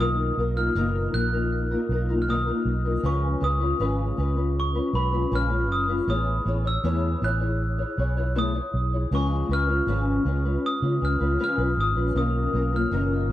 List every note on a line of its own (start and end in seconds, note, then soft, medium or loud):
0.00 0.30 B1 medium
0.00 0.37 B2 medium
0.00 0.38 D#3 medium
0.00 0.36 A#3 medium
0.00 0.36 D#4 medium
0.00 0.37 F4 medium
0.00 0.38 A#4 medium
0.00 0.59 D#6 loud
0.37 0.68 B1 medium
0.37 0.56 A#3 medium
0.37 0.56 D#4 medium
0.37 0.56 F4 medium
0.37 0.55 A#4 medium
0.56 0.75 A#3 soft
0.56 0.75 D#4 soft
0.56 0.75 F4 medium
0.56 0.76 A#4 soft
0.56 1.10 F6 medium
0.75 1.06 F#1 medium
0.75 1.13 B2 medium
0.75 1.14 D#3 medium
0.75 1.12 A#3 medium
0.75 1.13 D#4 medium
0.75 1.14 F4 medium
0.75 1.14 A#4 medium
1.13 1.74 A#1 medium
1.13 1.33 A#3 medium
1.13 1.33 D#4 medium
1.13 1.33 F4 medium
1.13 1.31 A#4 medium
1.13 2.24 F#6 medium
1.33 1.72 A#3 soft
1.33 1.71 D#4 soft
1.33 1.70 F4 soft
1.33 1.70 A#4 soft
1.71 1.88 A#3 soft
1.71 1.89 D#4 soft
1.71 1.90 F4 soft
1.71 1.90 A#4 medium
1.89 2.50 B1 medium
1.89 2.09 A#3 soft
1.89 2.09 D#4 medium
1.89 2.08 F4 medium
1.89 2.07 A#4 medium
2.09 2.27 A#3 soft
2.09 2.28 D#4 soft
2.09 2.28 F4 medium
2.09 2.28 A#4 medium
2.22 2.28 F6 medium
2.28 2.47 B2 medium
2.28 2.47 D#3 medium
2.28 2.47 A#3 medium
2.28 2.47 D#4 medium
2.28 2.46 F4 medium
2.28 2.46 A#4 medium
2.28 3.01 D#6 medium
2.47 2.86 A#3 soft
2.47 2.85 D#4 soft
2.47 2.84 F4 soft
2.47 2.84 A#4 medium
2.65 2.96 B1 medium
2.85 3.03 A#3 soft
2.85 3.04 D#4 soft
2.85 3.03 F4 soft
2.85 3.04 A#4 soft
3.03 3.34 C#2 medium
3.03 3.41 C#3 medium
3.03 3.42 F3 medium
3.03 3.39 G#3 medium
3.03 3.40 C#4 medium
3.03 3.41 F4 medium
3.03 3.42 B4 medium
3.03 3.40 C#6 medium
3.40 3.72 C#2 medium
3.40 3.60 G#3 medium
3.40 3.60 C#4 medium
3.40 3.59 F4 medium
3.40 3.58 B4 medium
3.40 4.53 D#6 medium
3.60 3.78 G#3 soft
3.60 3.79 C#4 soft
3.60 3.79 F4 soft
3.60 3.79 B4 soft
3.79 4.10 G#1 medium
3.79 4.17 C#3 medium
3.79 4.18 F3 medium
3.79 4.16 G#3 medium
3.79 4.16 C#4 medium
3.79 4.17 F4 medium
3.79 4.18 B4 medium
4.17 4.79 C#2 medium
4.17 4.36 G#3 medium
4.17 4.36 C#4 medium
4.17 4.36 F4 medium
4.17 4.35 B4 medium
4.36 4.75 G#3 soft
4.36 4.75 C#4 soft
4.36 4.74 F4 soft
4.36 4.74 B4 soft
4.60 4.97 C#6 medium
4.75 4.92 G#3 soft
4.75 4.93 C#4 soft
4.75 4.94 F4 soft
4.75 4.94 B4 medium
4.93 5.24 B1 medium
4.93 5.12 G#3 soft
4.93 5.13 C#4 medium
4.93 5.12 F4 soft
4.93 5.11 B4 medium
4.93 5.34 B5 medium
5.13 5.31 G#3 soft
5.13 5.31 C#4 soft
5.13 5.31 F4 soft
5.13 5.32 B4 medium
5.31 5.69 A#1 medium
5.31 5.51 C#3 medium
5.31 5.51 F3 medium
5.31 5.51 G#3 medium
5.31 5.50 C#4 medium
5.31 5.49 F4 medium
5.31 5.49 B4 medium
5.35 5.73 F6 loud
5.50 5.89 G#3 soft
5.50 5.88 C#4 soft
5.50 5.88 F4 soft
5.50 5.87 B4 soft
5.69 6.00 F#1 medium
5.69 5.89 D#6 medium
5.88 6.07 G#3 soft
5.88 6.08 C#4 soft
5.88 6.08 F4 soft
5.88 6.08 B4 soft
6.07 6.38 A1 medium
6.07 6.45 A3 medium
6.07 6.44 B3 medium
6.07 6.45 E4 medium
6.07 6.46 G#4 medium
6.07 6.46 C#5 medium
6.07 6.68 D#6 medium
6.45 6.76 A1 medium
6.45 6.65 B3 medium
6.45 6.65 E4 medium
6.45 6.64 G#4 medium
6.45 6.63 C#5 medium
6.64 6.83 E4 soft
6.64 6.83 G#4 soft
6.64 6.84 C#5 soft
6.64 7.19 E6 medium
6.83 7.14 E2 medium
6.83 7.22 A3 medium
6.83 7.20 B3 medium
6.83 7.21 E4 medium
6.83 7.22 G#4 medium
6.83 7.22 C#5 medium
7.21 7.83 A1 medium
7.21 7.41 B3 medium
7.21 7.41 E4 medium
7.21 7.40 G#4 medium
7.21 7.39 C#5 medium
7.21 8.33 F#6 loud
7.40 7.79 E4 soft
7.40 7.78 G#4 soft
7.40 7.77 C#5 soft
7.78 7.97 E4 soft
7.78 7.98 G#4 soft
7.78 7.98 C#5 soft
7.97 8.59 B1 medium
7.97 8.16 B3 soft
7.97 8.17 E4 medium
7.97 8.17 G#4 medium
7.97 8.16 C#5 medium
8.17 8.34 E4 soft
8.17 8.35 G#4 medium
8.17 8.35 C#5 medium
8.35 8.55 A3 medium
8.35 8.55 B3 medium
8.35 8.55 E4 medium
8.35 8.54 G#4 medium
8.35 8.53 C#5 medium
8.35 9.15 D#6 medium
8.54 8.94 E4 soft
8.54 8.93 G#4 soft
8.54 8.91 C#5 soft
8.74 9.04 B1 medium
8.93 9.12 E4 soft
8.93 9.12 G#4 soft
8.93 9.12 C#5 soft
9.11 9.42 C#2 medium
9.11 9.50 C#3 medium
9.11 9.50 F3 medium
9.11 9.48 G#3 medium
9.11 9.49 C#4 medium
9.11 9.49 F4 medium
9.11 9.50 B4 medium
9.11 9.52 C#6 medium
9.49 9.80 C#2 medium
9.49 9.69 G#3 medium
9.49 9.69 C#4 medium
9.49 9.67 F4 medium
9.49 9.67 B4 medium
9.53 10.69 F6 loud
9.68 9.86 G#3 soft
9.68 9.87 C#4 soft
9.68 9.87 F4 soft
9.68 9.87 B4 soft
9.87 10.18 G#1 medium
9.87 10.26 C#3 medium
9.87 10.26 F3 medium
9.87 10.24 G#3 medium
9.87 10.24 C#4 medium
9.87 10.25 F4 medium
9.87 10.26 B4 medium
10.25 10.56 C#2 medium
10.25 10.44 G#3 medium
10.25 10.45 C#4 medium
10.25 10.45 F4 medium
10.25 10.44 B4 medium
10.45 10.83 G#3 soft
10.45 10.82 C#4 soft
10.45 10.82 F4 soft
10.45 10.81 B4 medium
10.66 10.83 D#6 medium
10.82 10.98 C#3 medium
10.82 11.00 G#3 soft
10.82 11.01 C#4 soft
10.82 11.02 F4 soft
10.82 11.02 B4 soft
11.01 11.17 C#2 medium
11.01 11.20 G#3 medium
11.01 11.20 C#4 medium
11.01 11.20 F4 medium
11.01 11.19 B4 medium
11.01 11.42 F6 medium
11.20 11.36 C#2 medium
11.20 11.38 G#3 soft
11.20 11.38 C#4 soft
11.20 11.39 F4 soft
11.20 11.39 B4 medium
11.38 11.58 C#3 medium
11.38 11.58 F3 medium
11.38 11.59 G#3 medium
11.38 11.58 C#4 medium
11.38 11.57 F4 medium
11.38 11.57 B4 medium
11.44 11.81 F6 medium
11.58 11.73 B1 medium
11.58 11.97 G#3 soft
11.58 11.96 C#4 soft
11.58 11.96 F4 soft
11.58 11.95 B4 medium
11.77 11.93 G#1 medium
11.77 12.16 D#6 medium
11.96 12.12 A#1 medium
11.96 12.15 G#3 soft
11.96 12.14 C#4 soft
11.96 12.15 F4 soft
11.96 12.16 B4 soft
12.15 12.46 B1 medium
12.15 12.53 B2 medium
12.15 12.54 D#3 medium
12.15 12.52 A#3 medium
12.15 12.53 C#4 medium
12.15 12.53 F4 medium
12.15 12.54 A#4 medium
12.15 12.75 D#6 medium
12.53 12.84 B1 medium
12.53 12.73 A#3 medium
12.53 12.72 C#4 medium
12.53 12.72 F4 medium
12.53 12.71 A#4 medium
12.72 12.90 A#3 soft
12.72 12.91 C#4 soft
12.72 12.91 F4 soft
12.72 12.92 A#4 soft
12.72 13.32 F6 medium
12.91 13.30 F#1 medium
12.91 13.29 B2 medium
12.91 13.30 D#3 medium
12.91 13.28 A#3 medium
12.91 13.29 C#4 medium
12.91 13.30 F4 medium
12.91 13.30 A#4 medium